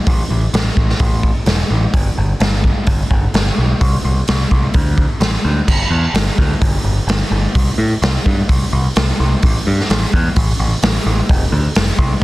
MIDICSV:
0, 0, Header, 1, 3, 480
1, 0, Start_track
1, 0, Tempo, 467290
1, 76, Time_signature, 4, 2, 24, 8
1, 12572, End_track
2, 0, Start_track
2, 0, Title_t, "Picked electric bass"
2, 0, Program_c, 0, 34
2, 74, Note_on_c, 0, 33, 87
2, 230, Note_off_c, 0, 33, 0
2, 314, Note_on_c, 0, 33, 86
2, 469, Note_off_c, 0, 33, 0
2, 550, Note_on_c, 0, 33, 84
2, 707, Note_off_c, 0, 33, 0
2, 790, Note_on_c, 0, 33, 87
2, 947, Note_off_c, 0, 33, 0
2, 1028, Note_on_c, 0, 33, 92
2, 1341, Note_off_c, 0, 33, 0
2, 1504, Note_on_c, 0, 28, 89
2, 1663, Note_off_c, 0, 28, 0
2, 1751, Note_on_c, 0, 33, 83
2, 1908, Note_off_c, 0, 33, 0
2, 1991, Note_on_c, 0, 31, 92
2, 2148, Note_off_c, 0, 31, 0
2, 2236, Note_on_c, 0, 31, 89
2, 2391, Note_off_c, 0, 31, 0
2, 2464, Note_on_c, 0, 31, 96
2, 2779, Note_off_c, 0, 31, 0
2, 2949, Note_on_c, 0, 31, 95
2, 3106, Note_off_c, 0, 31, 0
2, 3191, Note_on_c, 0, 31, 88
2, 3348, Note_off_c, 0, 31, 0
2, 3433, Note_on_c, 0, 31, 90
2, 3589, Note_off_c, 0, 31, 0
2, 3677, Note_on_c, 0, 35, 84
2, 3832, Note_off_c, 0, 35, 0
2, 3916, Note_on_c, 0, 36, 85
2, 4072, Note_off_c, 0, 36, 0
2, 4158, Note_on_c, 0, 36, 85
2, 4313, Note_off_c, 0, 36, 0
2, 4404, Note_on_c, 0, 36, 93
2, 4557, Note_off_c, 0, 36, 0
2, 4637, Note_on_c, 0, 36, 87
2, 4793, Note_off_c, 0, 36, 0
2, 4874, Note_on_c, 0, 38, 88
2, 5187, Note_off_c, 0, 38, 0
2, 5346, Note_on_c, 0, 33, 94
2, 5506, Note_off_c, 0, 33, 0
2, 5595, Note_on_c, 0, 38, 88
2, 5752, Note_off_c, 0, 38, 0
2, 5831, Note_on_c, 0, 31, 80
2, 5982, Note_off_c, 0, 31, 0
2, 6063, Note_on_c, 0, 40, 82
2, 6217, Note_off_c, 0, 40, 0
2, 6304, Note_on_c, 0, 31, 86
2, 6458, Note_off_c, 0, 31, 0
2, 6555, Note_on_c, 0, 38, 84
2, 6706, Note_off_c, 0, 38, 0
2, 6794, Note_on_c, 0, 31, 86
2, 6945, Note_off_c, 0, 31, 0
2, 7023, Note_on_c, 0, 31, 83
2, 7178, Note_off_c, 0, 31, 0
2, 7263, Note_on_c, 0, 31, 91
2, 7418, Note_off_c, 0, 31, 0
2, 7509, Note_on_c, 0, 31, 80
2, 7662, Note_off_c, 0, 31, 0
2, 7758, Note_on_c, 0, 36, 84
2, 7909, Note_off_c, 0, 36, 0
2, 7992, Note_on_c, 0, 45, 88
2, 8145, Note_off_c, 0, 45, 0
2, 8238, Note_on_c, 0, 36, 88
2, 8389, Note_off_c, 0, 36, 0
2, 8485, Note_on_c, 0, 43, 91
2, 8634, Note_off_c, 0, 43, 0
2, 8721, Note_on_c, 0, 36, 82
2, 8871, Note_off_c, 0, 36, 0
2, 8964, Note_on_c, 0, 36, 93
2, 9113, Note_off_c, 0, 36, 0
2, 9208, Note_on_c, 0, 36, 87
2, 9356, Note_off_c, 0, 36, 0
2, 9448, Note_on_c, 0, 36, 85
2, 9595, Note_off_c, 0, 36, 0
2, 9692, Note_on_c, 0, 33, 91
2, 9839, Note_off_c, 0, 33, 0
2, 9932, Note_on_c, 0, 43, 85
2, 10079, Note_off_c, 0, 43, 0
2, 10172, Note_on_c, 0, 33, 94
2, 10318, Note_off_c, 0, 33, 0
2, 10409, Note_on_c, 0, 40, 91
2, 10556, Note_off_c, 0, 40, 0
2, 10646, Note_on_c, 0, 33, 92
2, 10794, Note_off_c, 0, 33, 0
2, 10882, Note_on_c, 0, 33, 98
2, 11030, Note_off_c, 0, 33, 0
2, 11122, Note_on_c, 0, 33, 97
2, 11270, Note_off_c, 0, 33, 0
2, 11361, Note_on_c, 0, 33, 89
2, 11509, Note_off_c, 0, 33, 0
2, 11605, Note_on_c, 0, 29, 95
2, 11751, Note_off_c, 0, 29, 0
2, 11837, Note_on_c, 0, 38, 93
2, 11985, Note_off_c, 0, 38, 0
2, 12081, Note_on_c, 0, 29, 88
2, 12227, Note_off_c, 0, 29, 0
2, 12309, Note_on_c, 0, 36, 92
2, 12458, Note_off_c, 0, 36, 0
2, 12572, End_track
3, 0, Start_track
3, 0, Title_t, "Drums"
3, 69, Note_on_c, 9, 46, 50
3, 70, Note_on_c, 9, 36, 100
3, 172, Note_off_c, 9, 46, 0
3, 173, Note_off_c, 9, 36, 0
3, 552, Note_on_c, 9, 46, 50
3, 565, Note_on_c, 9, 38, 102
3, 655, Note_off_c, 9, 46, 0
3, 667, Note_off_c, 9, 38, 0
3, 789, Note_on_c, 9, 36, 77
3, 892, Note_off_c, 9, 36, 0
3, 919, Note_on_c, 9, 38, 30
3, 1022, Note_off_c, 9, 38, 0
3, 1022, Note_on_c, 9, 46, 46
3, 1027, Note_on_c, 9, 36, 104
3, 1124, Note_off_c, 9, 46, 0
3, 1130, Note_off_c, 9, 36, 0
3, 1267, Note_on_c, 9, 36, 76
3, 1370, Note_off_c, 9, 36, 0
3, 1501, Note_on_c, 9, 46, 50
3, 1514, Note_on_c, 9, 38, 102
3, 1604, Note_off_c, 9, 46, 0
3, 1617, Note_off_c, 9, 38, 0
3, 1989, Note_on_c, 9, 36, 104
3, 1989, Note_on_c, 9, 46, 51
3, 2092, Note_off_c, 9, 36, 0
3, 2092, Note_off_c, 9, 46, 0
3, 2468, Note_on_c, 9, 46, 50
3, 2481, Note_on_c, 9, 38, 116
3, 2571, Note_off_c, 9, 46, 0
3, 2583, Note_off_c, 9, 38, 0
3, 2711, Note_on_c, 9, 36, 76
3, 2814, Note_off_c, 9, 36, 0
3, 2944, Note_on_c, 9, 46, 50
3, 2951, Note_on_c, 9, 36, 97
3, 3046, Note_off_c, 9, 46, 0
3, 3053, Note_off_c, 9, 36, 0
3, 3191, Note_on_c, 9, 36, 80
3, 3294, Note_off_c, 9, 36, 0
3, 3431, Note_on_c, 9, 46, 51
3, 3444, Note_on_c, 9, 38, 107
3, 3534, Note_off_c, 9, 46, 0
3, 3546, Note_off_c, 9, 38, 0
3, 3913, Note_on_c, 9, 46, 54
3, 3915, Note_on_c, 9, 36, 106
3, 4016, Note_off_c, 9, 46, 0
3, 4017, Note_off_c, 9, 36, 0
3, 4392, Note_on_c, 9, 46, 50
3, 4404, Note_on_c, 9, 38, 112
3, 4494, Note_off_c, 9, 46, 0
3, 4507, Note_off_c, 9, 38, 0
3, 4635, Note_on_c, 9, 36, 81
3, 4737, Note_off_c, 9, 36, 0
3, 4865, Note_on_c, 9, 46, 47
3, 4874, Note_on_c, 9, 36, 100
3, 4968, Note_off_c, 9, 46, 0
3, 4976, Note_off_c, 9, 36, 0
3, 5111, Note_on_c, 9, 36, 76
3, 5214, Note_off_c, 9, 36, 0
3, 5348, Note_on_c, 9, 46, 49
3, 5360, Note_on_c, 9, 38, 107
3, 5451, Note_off_c, 9, 46, 0
3, 5463, Note_off_c, 9, 38, 0
3, 5835, Note_on_c, 9, 36, 102
3, 5836, Note_on_c, 9, 49, 106
3, 5938, Note_off_c, 9, 36, 0
3, 5939, Note_off_c, 9, 49, 0
3, 6312, Note_on_c, 9, 46, 55
3, 6324, Note_on_c, 9, 38, 105
3, 6415, Note_off_c, 9, 46, 0
3, 6427, Note_off_c, 9, 38, 0
3, 6555, Note_on_c, 9, 36, 75
3, 6658, Note_off_c, 9, 36, 0
3, 6797, Note_on_c, 9, 36, 105
3, 6799, Note_on_c, 9, 46, 55
3, 6899, Note_off_c, 9, 36, 0
3, 6901, Note_off_c, 9, 46, 0
3, 7278, Note_on_c, 9, 46, 54
3, 7290, Note_on_c, 9, 38, 114
3, 7381, Note_off_c, 9, 46, 0
3, 7393, Note_off_c, 9, 38, 0
3, 7754, Note_on_c, 9, 46, 58
3, 7757, Note_on_c, 9, 36, 99
3, 7857, Note_off_c, 9, 46, 0
3, 7860, Note_off_c, 9, 36, 0
3, 8242, Note_on_c, 9, 46, 55
3, 8255, Note_on_c, 9, 38, 101
3, 8345, Note_off_c, 9, 46, 0
3, 8357, Note_off_c, 9, 38, 0
3, 8483, Note_on_c, 9, 36, 75
3, 8586, Note_off_c, 9, 36, 0
3, 8723, Note_on_c, 9, 36, 106
3, 8723, Note_on_c, 9, 46, 50
3, 8825, Note_off_c, 9, 46, 0
3, 8826, Note_off_c, 9, 36, 0
3, 9200, Note_on_c, 9, 46, 52
3, 9212, Note_on_c, 9, 38, 115
3, 9303, Note_off_c, 9, 46, 0
3, 9315, Note_off_c, 9, 38, 0
3, 9680, Note_on_c, 9, 46, 57
3, 9688, Note_on_c, 9, 36, 101
3, 9783, Note_off_c, 9, 46, 0
3, 9790, Note_off_c, 9, 36, 0
3, 10067, Note_on_c, 9, 38, 30
3, 10168, Note_on_c, 9, 46, 56
3, 10170, Note_off_c, 9, 38, 0
3, 10180, Note_on_c, 9, 38, 108
3, 10270, Note_off_c, 9, 46, 0
3, 10283, Note_off_c, 9, 38, 0
3, 10409, Note_on_c, 9, 36, 72
3, 10512, Note_off_c, 9, 36, 0
3, 10642, Note_on_c, 9, 46, 59
3, 10648, Note_on_c, 9, 36, 111
3, 10745, Note_off_c, 9, 46, 0
3, 10751, Note_off_c, 9, 36, 0
3, 11118, Note_on_c, 9, 46, 59
3, 11131, Note_on_c, 9, 38, 114
3, 11221, Note_off_c, 9, 46, 0
3, 11233, Note_off_c, 9, 38, 0
3, 11600, Note_on_c, 9, 46, 54
3, 11601, Note_on_c, 9, 36, 110
3, 11702, Note_off_c, 9, 46, 0
3, 11704, Note_off_c, 9, 36, 0
3, 12072, Note_on_c, 9, 46, 57
3, 12084, Note_on_c, 9, 38, 105
3, 12175, Note_off_c, 9, 46, 0
3, 12187, Note_off_c, 9, 38, 0
3, 12312, Note_on_c, 9, 36, 68
3, 12415, Note_off_c, 9, 36, 0
3, 12572, End_track
0, 0, End_of_file